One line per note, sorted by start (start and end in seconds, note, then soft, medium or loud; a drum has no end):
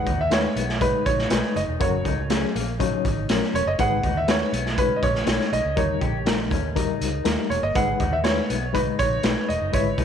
0.00 0.13 G#3 medium
0.00 0.13 D#4 medium
0.00 0.13 B4 medium
0.00 0.21 F#5 medium
0.06 0.45 D#2 medium
0.06 0.21 D#4 medium
0.06 kick medium
0.06 closed hi-hat medium
0.21 0.32 E5 medium
0.31 0.63 G#3 medium
0.31 0.46 C#4 medium
0.31 0.63 D#4 medium
0.31 0.63 B4 medium
0.31 0.83 C#5 medium
0.31 snare loud
0.31 closed hi-hat medium
0.56 0.94 B1 medium
0.56 0.71 B3 medium
0.56 closed hi-hat medium
0.69 snare soft
0.81 1.13 G#3 medium
0.81 1.28 D#4 medium
0.81 1.13 D#4 medium
0.81 1.13 B4 medium
0.81 1.07 B4 medium
0.81 kick medium
0.81 closed hi-hat medium
1.06 1.25 A#1 medium
1.06 1.57 C#5 medium
1.06 kick medium
1.06 closed hi-hat medium
1.19 snare soft
1.30 1.40 B1 medium
1.30 1.62 G#3 medium
1.30 1.62 D#4 medium
1.30 1.78 D#4 medium
1.30 1.63 B4 medium
1.30 snare loud
1.30 closed hi-hat medium
1.56 1.65 F#1 medium
1.56 1.62 D#5 medium
1.56 closed hi-hat medium
1.68 1.78 E1 medium
1.79 2.00 F#1 loud
1.79 2.12 F#3 medium
1.79 2.12 C#4 medium
1.79 1.95 F#4 medium
1.79 2.12 A#4 medium
1.79 2.27 C#5 medium
1.79 kick loud
1.79 closed hi-hat medium
2.05 2.43 C#2 loud
2.05 2.20 D#4 medium
2.05 kick medium
2.05 closed hi-hat medium
2.30 2.62 F#3 medium
2.30 2.62 C#4 medium
2.30 2.45 C#4 medium
2.30 2.62 G#4 medium
2.30 snare loud
2.30 closed hi-hat medium
2.55 2.93 A#1 medium
2.55 2.70 A#3 medium
2.55 closed hi-hat medium
2.79 3.11 F#3 medium
2.79 3.12 C#4 medium
2.79 3.26 D#4 medium
2.79 3.12 C#5 medium
2.79 kick medium
2.79 closed hi-hat medium
3.05 3.24 G#1 medium
3.05 kick medium
3.05 closed hi-hat medium
3.29 3.39 A#1 medium
3.29 3.61 F#3 medium
3.29 3.61 C#4 medium
3.29 3.76 C#4 medium
3.29 3.61 A#4 medium
3.29 snare loud
3.29 closed hi-hat medium
3.43 snare soft
3.53 3.63 E1 medium
3.53 3.67 C#5 medium
3.53 closed hi-hat medium
3.66 3.76 F#1 medium
3.66 3.72 D#5 medium
3.79 3.98 G#1 loud
3.79 4.11 G#3 medium
3.79 4.11 D#4 medium
3.79 3.94 G#4 medium
3.79 4.11 B4 medium
3.79 4.18 F#5 loud
3.79 kick loud
3.79 closed hi-hat medium
4.03 4.42 D#2 medium
4.03 4.18 D#4 medium
4.03 kick medium
4.03 closed hi-hat medium
4.17 4.29 E5 medium
4.28 4.60 G#3 medium
4.28 4.43 C#4 medium
4.28 4.60 D#4 medium
4.28 4.60 B4 medium
4.28 4.80 C#5 medium
4.28 snare loud
4.28 closed hi-hat medium
4.52 4.91 B1 medium
4.52 4.68 B3 medium
4.52 closed hi-hat medium
4.66 snare soft
4.78 5.10 G#3 medium
4.78 5.25 C#4 medium
4.78 5.10 D#4 medium
4.78 5.10 B4 medium
4.78 4.97 B4 medium
4.78 kick medium
4.78 closed hi-hat medium
4.96 5.03 D#5 medium
5.03 5.22 A#1 medium
5.03 5.54 C#5 medium
5.03 kick medium
5.03 closed hi-hat medium
5.15 snare soft
5.26 5.37 B1 loud
5.26 5.59 G#3 medium
5.26 5.74 C#4 medium
5.26 5.59 D#4 medium
5.26 5.59 C#5 medium
5.26 snare loud
5.26 closed hi-hat medium
5.41 snare soft
5.52 5.62 B1 medium
5.52 5.78 D#5 medium
5.52 closed hi-hat medium
5.65 5.74 C#2 medium
5.76 5.96 D#2 medium
5.76 6.09 G3 medium
5.76 6.09 D#4 medium
5.76 5.92 D#4 medium
5.76 6.09 A#4 medium
5.76 6.24 C#5 medium
5.76 kick loud
5.76 closed hi-hat medium
6.01 6.51 A#1 medium
6.01 6.16 G4 medium
6.01 kick medium
6.01 closed hi-hat medium
6.26 6.58 G3 medium
6.26 6.58 D#4 medium
6.26 6.41 D#4 medium
6.26 6.59 A#4 medium
6.26 snare loud
6.26 closed hi-hat medium
6.51 6.90 D#2 medium
6.51 6.66 C#4 medium
6.51 kick medium
6.51 closed hi-hat medium
6.75 7.08 G3 medium
6.75 7.08 D#4 medium
6.75 7.23 D#4 medium
6.75 7.08 A#4 medium
6.75 kick medium
6.75 closed hi-hat medium
7.01 7.20 C#2 medium
7.01 closed hi-hat medium
7.24 7.35 D#2 medium
7.24 7.57 G3 medium
7.24 7.73 A#3 medium
7.24 7.57 D#4 medium
7.24 7.57 A#4 medium
7.24 snare loud
7.24 closed hi-hat medium
7.50 7.60 E1 medium
7.50 7.63 C#5 medium
7.50 closed hi-hat medium
7.63 7.73 G1 medium
7.63 7.76 D#5 medium
7.75 7.95 G#1 medium
7.75 8.07 G#3 medium
7.75 8.07 D#4 medium
7.75 7.91 G#4 medium
7.75 8.07 B4 medium
7.75 8.14 F#5 loud
7.75 kick loud
7.75 closed hi-hat medium
8.00 8.38 D#2 medium
8.00 8.15 D#4 medium
8.00 kick medium
8.00 closed hi-hat medium
8.13 8.18 E5 medium
8.24 8.56 G#3 medium
8.24 8.40 C#4 medium
8.24 8.56 D#4 medium
8.24 8.57 B4 medium
8.24 8.76 C#5 medium
8.24 snare loud
8.24 closed hi-hat medium
8.50 8.88 B1 medium
8.50 8.64 B3 medium
8.50 closed hi-hat medium
8.73 9.06 G#3 medium
8.73 9.06 D#4 medium
8.73 9.21 D#4 medium
8.73 9.06 B4 medium
8.73 8.80 B4 medium
8.73 kick medium
8.73 closed hi-hat medium
8.99 9.19 A#1 medium
8.99 9.50 C#5 loud
8.99 kick medium
8.99 closed hi-hat medium
9.23 9.34 B1 medium
9.23 9.56 G#3 medium
9.23 9.56 D#4 medium
9.23 9.71 D#4 medium
9.23 9.56 B4 medium
9.23 snare loud
9.23 closed hi-hat medium
9.48 9.58 E1 medium
9.48 9.74 D#5 medium
9.48 closed hi-hat medium
9.61 9.71 F#1 medium
9.72 9.93 G#1 loud
9.72 10.05 G#3 medium
9.72 10.05 E4 medium
9.72 9.88 E4 medium
9.72 10.05 B4 medium
9.72 10.05 C#5 medium
9.72 kick loud
9.72 closed hi-hat medium
9.98 10.05 B1 medium
9.98 10.05 D#4 medium
9.98 kick medium
9.98 closed hi-hat medium